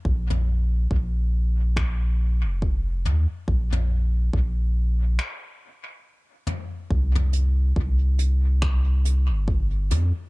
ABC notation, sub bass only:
X:1
M:4/4
L:1/16
Q:"Swing 16ths" 1/4=70
K:Cphr
V:1 name="Sub bass" clef=bass
B,,,4 B,,,6- B,,, F,,,3 E,, z | B,,,4 B,,,4 z8 | C,,4 C,,6- C,, G,,,3 F,, z |]